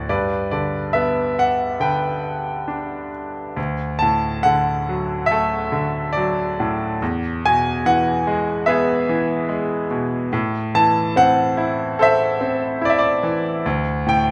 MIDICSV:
0, 0, Header, 1, 2, 480
1, 0, Start_track
1, 0, Tempo, 860832
1, 47, Time_signature, 4, 2, 24, 8
1, 1008, Tempo, 882353
1, 2448, Tempo, 853485
1, 3888, Tempo, 831025
1, 8102, End_track
2, 0, Start_track
2, 0, Title_t, "Grand piano"
2, 0, Program_c, 0, 0
2, 0, Control_c, 0, 64, 127
2, 0, Note_on_c, 0, 66, 46
2, 52, Note_on_c, 0, 74, 64
2, 53, Control_c, 0, 64, 0
2, 54, Note_on_c, 0, 43, 49
2, 55, Note_on_c, 0, 71, 50
2, 56, Note_off_c, 0, 66, 0
2, 144, Control_c, 0, 64, 127
2, 269, Note_off_c, 0, 74, 0
2, 287, Note_on_c, 0, 74, 55
2, 291, Note_on_c, 0, 50, 37
2, 508, Note_off_c, 0, 74, 0
2, 519, Note_on_c, 0, 76, 62
2, 529, Note_on_c, 0, 59, 42
2, 770, Note_off_c, 0, 76, 0
2, 776, Note_on_c, 0, 78, 70
2, 989, Note_off_c, 0, 71, 0
2, 995, Note_off_c, 0, 50, 0
2, 996, Note_off_c, 0, 78, 0
2, 1004, Note_on_c, 0, 50, 38
2, 1008, Note_on_c, 0, 79, 62
2, 1015, Note_on_c, 0, 71, 49
2, 1469, Note_off_c, 0, 59, 0
2, 1481, Note_on_c, 0, 62, 36
2, 1708, Note_off_c, 0, 79, 0
2, 1948, Note_off_c, 0, 50, 0
2, 1953, Note_off_c, 0, 43, 0
2, 1954, Note_off_c, 0, 62, 0
2, 1954, Note_off_c, 0, 71, 0
2, 1964, Note_on_c, 0, 38, 53
2, 1978, Control_c, 0, 64, 0
2, 2065, Control_c, 0, 64, 127
2, 2194, Note_on_c, 0, 81, 72
2, 2213, Note_on_c, 0, 45, 45
2, 2435, Note_on_c, 0, 78, 81
2, 2446, Note_on_c, 0, 50, 41
2, 2447, Note_off_c, 0, 81, 0
2, 2692, Note_on_c, 0, 54, 45
2, 2902, Note_on_c, 0, 76, 71
2, 2930, Note_on_c, 0, 57, 49
2, 2933, Note_on_c, 0, 69, 57
2, 2936, Note_off_c, 0, 78, 0
2, 3144, Note_off_c, 0, 45, 0
2, 3151, Note_off_c, 0, 50, 0
2, 3160, Note_on_c, 0, 50, 50
2, 3388, Note_on_c, 0, 74, 67
2, 3404, Note_off_c, 0, 54, 0
2, 3407, Note_off_c, 0, 76, 0
2, 3413, Note_on_c, 0, 54, 52
2, 3654, Note_on_c, 0, 45, 48
2, 3736, Note_off_c, 0, 74, 0
2, 3862, Note_off_c, 0, 38, 0
2, 3864, Note_off_c, 0, 50, 0
2, 3867, Note_off_c, 0, 57, 0
2, 3868, Note_off_c, 0, 69, 0
2, 3878, Note_off_c, 0, 54, 0
2, 3884, Note_off_c, 0, 45, 0
2, 3892, Note_on_c, 0, 40, 62
2, 3897, Control_c, 0, 64, 0
2, 3998, Control_c, 0, 64, 127
2, 4142, Note_on_c, 0, 47, 47
2, 4142, Note_on_c, 0, 80, 87
2, 4376, Note_on_c, 0, 52, 50
2, 4377, Note_on_c, 0, 78, 83
2, 4385, Note_off_c, 0, 80, 0
2, 4614, Note_on_c, 0, 56, 56
2, 4838, Note_on_c, 0, 76, 76
2, 4845, Note_on_c, 0, 59, 59
2, 4856, Note_on_c, 0, 68, 52
2, 4862, Note_off_c, 0, 78, 0
2, 5063, Note_off_c, 0, 47, 0
2, 5079, Note_off_c, 0, 52, 0
2, 5088, Note_on_c, 0, 52, 52
2, 5309, Note_off_c, 0, 56, 0
2, 5318, Note_on_c, 0, 56, 53
2, 5530, Note_off_c, 0, 76, 0
2, 5559, Note_on_c, 0, 47, 51
2, 5775, Note_off_c, 0, 59, 0
2, 5777, Note_off_c, 0, 40, 0
2, 5780, Note_off_c, 0, 52, 0
2, 5780, Note_off_c, 0, 68, 0
2, 5783, Note_off_c, 0, 56, 0
2, 5792, Note_off_c, 0, 47, 0
2, 5801, Note_on_c, 0, 45, 67
2, 5805, Control_c, 0, 64, 0
2, 5910, Control_c, 0, 64, 127
2, 6044, Note_on_c, 0, 52, 55
2, 6045, Note_on_c, 0, 81, 91
2, 6283, Note_on_c, 0, 60, 54
2, 6289, Note_on_c, 0, 78, 90
2, 6291, Note_off_c, 0, 81, 0
2, 6521, Note_on_c, 0, 64, 53
2, 6763, Note_on_c, 0, 69, 58
2, 6773, Note_on_c, 0, 72, 58
2, 6779, Note_off_c, 0, 78, 0
2, 6782, Note_on_c, 0, 76, 83
2, 6980, Note_off_c, 0, 52, 0
2, 6994, Note_off_c, 0, 60, 0
2, 7003, Note_on_c, 0, 60, 47
2, 7229, Note_off_c, 0, 64, 0
2, 7238, Note_on_c, 0, 64, 48
2, 7260, Note_on_c, 0, 74, 71
2, 7266, Note_off_c, 0, 76, 0
2, 7285, Note_on_c, 0, 76, 57
2, 7288, Note_off_c, 0, 74, 0
2, 7322, Note_off_c, 0, 76, 0
2, 7336, Note_on_c, 0, 74, 68
2, 7480, Note_on_c, 0, 52, 49
2, 7592, Note_off_c, 0, 74, 0
2, 7701, Note_off_c, 0, 45, 0
2, 7701, Note_off_c, 0, 69, 0
2, 7703, Note_off_c, 0, 60, 0
2, 7706, Note_off_c, 0, 72, 0
2, 7707, Note_off_c, 0, 64, 0
2, 7715, Note_off_c, 0, 52, 0
2, 7725, Note_on_c, 0, 38, 63
2, 7729, Control_c, 0, 64, 0
2, 7816, Control_c, 0, 64, 127
2, 7960, Note_on_c, 0, 45, 47
2, 7972, Note_on_c, 0, 79, 80
2, 8102, Note_off_c, 0, 38, 0
2, 8102, Note_off_c, 0, 45, 0
2, 8102, Note_off_c, 0, 79, 0
2, 8102, End_track
0, 0, End_of_file